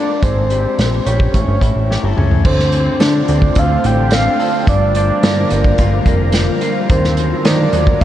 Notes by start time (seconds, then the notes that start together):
Already playing: A#3 D4 F4 A4 D5
0.23 G#1 G#3 C5, kick, closed hi-hat
0.50 G4, closed hi-hat
0.78 A#1, snare, closed hi-hat
1.06 A#1 G4 C#5, closed hi-hat
1.20 kick
1.34 A1 A2, kick, closed hi-hat
1.48 G1
1.61 A1 E4, kick, closed hi-hat
1.76 A1
1.90 G4, snare
2.03 G1 A4
2.17 C#2 C#4, mid tom
2.31 floor tom
2.44 D2 D3 A3 F4 C5, kick, crash
2.59 snare
2.72 C4, closed hi-hat
3.00 D3 D4 D5, snare, closed hi-hat
3.28 D2 C4, closed hi-hat
3.42 kick
3.55 D2 A4 F5, kick, closed hi-hat
3.84 A1 D4 G5, closed hi-hat
4.11 C4 F5, snare, closed hi-hat
4.39 A4, open hi-hat
4.67 G1 G2 G3 F4 A#4 D5, kick, closed hi-hat
4.95 F3 D5, closed hi-hat
5.23 G2 A#3, snare, closed hi-hat
5.50 G1 F3, closed hi-hat
5.64 kick
5.78 G1 F4, kick, closed hi-hat
6.06 F1 A#3, kick, closed hi-hat
6.32 F3, snare, closed hi-hat
6.61 F4, closed hi-hat
6.90 D#2 D#3 F#3 A#4 C5, kick, closed hi-hat
7.04 snare
7.17 F#3, closed hi-hat
7.45 D#3 A#3 D5, snare, closed hi-hat
7.73 D#2 F#3, closed hi-hat
7.87 kick
8.01 F5